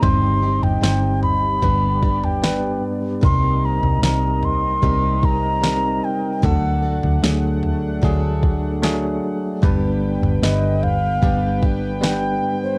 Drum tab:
SD |----o-------o---|----o-------o---|----o-------o---|----o-------o---|
FT |o--o--o-o--o----|o--o--o-o-------|o--o--o-o-------|o--o--o-o-------|
BD |o-------o-o-----|o-------o-o-----|o-------o-o-----|o-------o-o-----|